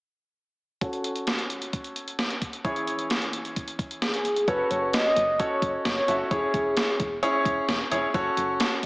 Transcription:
0.81 C#4 F#4 A4 C#5, kick, closed hi-hat
0.93 closed hi-hat
1.04 closed hi-hat
1.16 closed hi-hat
1.27 snare, closed hi-hat
1.39 closed hi-hat
1.50 closed hi-hat
1.62 closed hi-hat
1.73 kick, closed hi-hat
1.84 closed hi-hat
1.96 closed hi-hat
2.08 closed hi-hat
2.19 snare, closed hi-hat
2.30 closed hi-hat
2.42 kick, closed hi-hat
2.53 closed hi-hat
2.65 E3 C#4 E4 G#4 C#5, kick, closed hi-hat
2.76 closed hi-hat
2.87 closed hi-hat
2.99 closed hi-hat
3.10 snare, closed hi-hat
3.22 closed hi-hat
3.33 closed hi-hat
3.45 closed hi-hat
3.56 kick, closed hi-hat
3.68 closed hi-hat
3.79 kick, closed hi-hat
3.91 closed hi-hat
4.02 G#4, snare, closed hi-hat
4.14 closed hi-hat
4.25 closed hi-hat
4.36 closed hi-hat
4.48 F#1 C#4 F#4 A4 B4 C#5, kick, closed hi-hat
4.71 F#1 C#5, closed hi-hat
4.93 D#5, snare, closed hi-hat
5.16 F#1, closed hi-hat
5.39 C#4 F#4 A4 C#5, kick, closed hi-hat
5.62 F#1, kick, closed hi-hat
5.85 F#1 C#5, snare, closed hi-hat
6.08 F#1 C#4 F#4 A4 E5, closed hi-hat
6.31 E1 C#4 E4 G#4 C#5, kick, closed hi-hat
6.54 E1, kick, closed hi-hat
6.77 snare, closed hi-hat
7.00 E1, kick, closed hi-hat
7.23 C#4 E4 G#4 C#5, closed hi-hat
7.45 E1, kick, closed hi-hat
7.69 E1, snare, closed hi-hat
7.91 E1 C#4 E4 G#4 C#5, closed hi-hat
8.14 F#1 C#4 F#4 A4 C#5, kick, closed hi-hat
8.37 F#1, closed hi-hat
8.60 snare, closed hi-hat

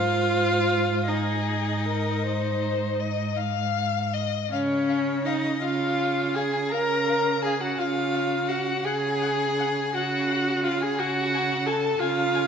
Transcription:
Already playing: G#2 F4 C5 F5
1.07 D#4 G#4 D#5
1.85 A#4
2.23 C5
2.99 D#5
3.37 F5
4.14 D#5
4.51 C#3 C#4 C#5 F5
4.89 F5
5.25 D#4 D#5 F5
5.62 C#3 F4 F5
5.99 F5
6.35 G#4 F5 G#5
6.71 C#3 A#4 F5 A#5
7.09 F5
7.42 G#4 F5 G#5
7.61 F#4 F#5
7.78 C#3 F4 F5
8.15 F5
8.48 F#4 F5 F#5
8.85 C#3 G#4 F#5 G#5
9.22 F#5
9.59 F#5
9.94 C#3 F#4 F#5
10.31 F#5
10.64 F4 F5 F#5
10.81 G#4 G#5
10.99 C#3 F#4 F#5 G#5
11.34 G#5
11.66 A4 G#5 A5
12.00 C#3 F4 F5 G#5
12.35 G#5

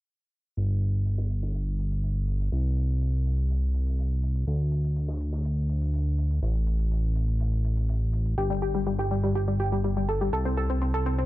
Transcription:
0.57 G1, closed hi-hat
0.81 closed hi-hat
0.94 closed hi-hat
1.06 closed hi-hat
1.18 snare
1.30 closed hi-hat
1.43 snare, closed hi-hat
1.55 closed hi-hat
1.79 closed hi-hat
1.90 closed hi-hat
1.92 closed hi-hat
2.03 closed hi-hat
2.28 closed hi-hat
2.40 closed hi-hat
2.52 C2, closed hi-hat
2.77 closed hi-hat
2.89 closed hi-hat
3.01 closed hi-hat
3.26 closed hi-hat
3.38 closed hi-hat
3.50 closed hi-hat
3.74 closed hi-hat
3.86 closed hi-hat
3.98 closed hi-hat
4.23 closed hi-hat
4.35 closed hi-hat
4.47 D2, closed hi-hat
4.72 closed hi-hat
4.84 closed hi-hat
4.96 closed hi-hat
5.08 snare
5.20 closed hi-hat
5.33 snare, closed hi-hat
5.45 closed hi-hat
5.69 closed hi-hat
5.82 closed hi-hat
5.94 closed hi-hat
6.18 closed hi-hat
6.31 closed hi-hat
6.43 A1, closed hi-hat
6.55 closed hi-hat
6.67 closed hi-hat
6.79 closed hi-hat
6.91 closed hi-hat
7.16 closed hi-hat
7.28 closed hi-hat
7.40 closed hi-hat
7.52 closed hi-hat
7.64 closed hi-hat
7.77 closed hi-hat
7.89 closed hi-hat
8.13 closed hi-hat
8.26 closed hi-hat
8.38 G1 G4, closed hi-hat
8.50 G3
8.62 G4, closed hi-hat
8.74 G3, closed hi-hat
8.86 G3, closed hi-hat
8.98 G4, snare
9.11 G3, closed hi-hat
9.23 G3, snare, closed hi-hat
9.34 G4, closed hi-hat
9.48 G3
9.59 G4, closed hi-hat
9.72 G3, closed hi-hat
9.84 G3, closed hi-hat
9.97 G3
10.08 A4, closed hi-hat
10.21 G3, closed hi-hat
10.32 C2 A4, closed hi-hat
10.45 C4
10.57 A4, closed hi-hat
10.70 C4, closed hi-hat
10.82 C4, closed hi-hat
10.94 A4
11.06 C4, closed hi-hat
11.18 C4, closed hi-hat

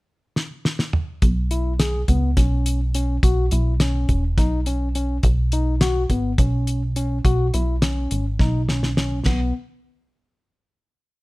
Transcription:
0.36 snare
0.65 snare
0.79 snare
0.93 mid tom
1.22 B1, kick, closed hi-hat
1.51 E4, closed hi-hat
1.80 G#4, snare, closed hi-hat
2.08 C#2 B3, kick, closed hi-hat
2.37 B1 C#4, kick, snare, closed hi-hat
2.66 closed hi-hat
2.94 C#4, closed hi-hat
3.23 B1 F#4, kick, closed hi-hat
3.51 B1 E4, closed hi-hat
3.80 C#4, snare, closed hi-hat
4.09 E1, kick, closed hi-hat
4.38 B1 D#4, kick, snare, closed hi-hat
4.66 C#4, closed hi-hat
4.95 C#4, closed hi-hat
5.23 B1, kick, closed hi-hat
5.52 D#4, closed hi-hat
5.81 F#4, snare, closed hi-hat
6.10 G#1 B3, kick, closed hi-hat
6.38 B1 C#4, kick, closed hi-hat
6.67 closed hi-hat
6.96 C#4, closed hi-hat
7.25 B1 F#4, kick, closed hi-hat
7.54 B1 E4, closed hi-hat
7.82 C#4, snare, closed hi-hat
8.11 G#1, closed hi-hat
8.39 B1 D#4, kick, snare
8.69 C#4, snare
8.83 snare
8.97 C#4, snare
9.26 B1 B3, kick, snare, ride bell

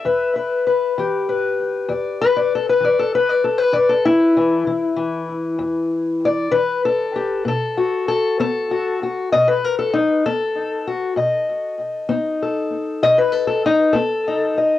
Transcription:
Already playing: E5
0.05 E2 B4
0.36 B4
0.67 B4
0.98 E3 G4
1.29 B4
1.89 E2 D5
2.21 B4
2.37 D5
2.55 A4
2.69 B4
2.80 E3
2.85 D5
2.99 A4
3.15 B4
3.29 D5
3.44 A4
3.58 B4
3.73 E2 D5
3.89 A4
4.05 E4
4.37 E3
4.67 E3
4.96 E3
5.59 E2
6.25 D5
6.51 E3 B4
6.85 A4
7.16 G4
7.45 B2 A4
7.77 F#4
8.08 A4
8.40 B3 A4
8.71 F#4
9.03 F#4
9.32 B2 D#5
9.48 B4
9.64 A#4
9.79 A4
9.94 D#4
10.26 B3 A4
10.87 F#4
11.16 B2 D#5
12.09 B3 D#4
12.43 A4
13.03 B2 D#5
13.18 B4
13.32 A4
13.47 A4
13.66 D#4
13.93 B3 A4
14.28 D#4
14.58 D#5

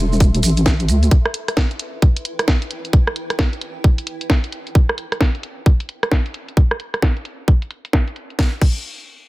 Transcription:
Already playing: E1 A4 E5 C6
0.13 maracas
0.20 kick, closed hi-hat, maracas
0.35 closed hi-hat, maracas
0.43 A1, closed hi-hat, maracas
0.57 closed hi-hat, maracas
0.66 kick, snare, maracas
0.80 closed hi-hat, maracas
0.89 D2, closed hi-hat, maracas
1.03 closed hi-hat, maracas
1.11 E4, kick, closed hi-hat
1.18 B4
1.25 cross-stick
1.34 closed hi-hat
1.48 cross-stick, closed hi-hat
1.57 kick, snare
1.71 closed hi-hat
1.79 G5, closed hi-hat
2.02 kick, closed hi-hat
2.16 closed hi-hat
2.25 closed hi-hat
2.39 cross-stick, closed hi-hat
2.48 kick, snare
2.62 closed hi-hat
2.71 closed hi-hat
2.85 closed hi-hat
2.93 kick, closed hi-hat
3.07 cross-stick
3.16 closed hi-hat
3.30 cross-stick, closed hi-hat
3.39 kick, snare
3.53 closed hi-hat
3.61 closed hi-hat
3.84 kick, closed hi-hat
3.98 closed hi-hat
4.07 closed hi-hat
4.21 closed hi-hat
4.30 kick, snare
4.44 closed hi-hat
4.52 closed hi-hat
4.67 closed hi-hat
4.75 kick, closed hi-hat
4.89 cross-stick
4.98 closed hi-hat
5.12 cross-stick, closed hi-hat
5.21 kick, snare
5.35 closed hi-hat
5.43 closed hi-hat
5.66 kick, closed hi-hat
5.80 closed hi-hat
5.89 closed hi-hat
6.03 cross-stick, closed hi-hat
6.12 kick, snare
6.26 closed hi-hat
6.34 closed hi-hat
6.48 closed hi-hat
6.57 kick, closed hi-hat
6.71 cross-stick
6.80 closed hi-hat
6.94 cross-stick, closed hi-hat
7.02 kick, snare
7.17 closed hi-hat
7.25 closed hi-hat
7.48 kick, closed hi-hat
7.62 closed hi-hat
7.71 closed hi-hat
7.85 closed hi-hat
7.93 kick, snare
8.08 closed hi-hat
8.16 closed hi-hat
8.30 closed hi-hat
8.39 kick, snare
8.62 kick, crash

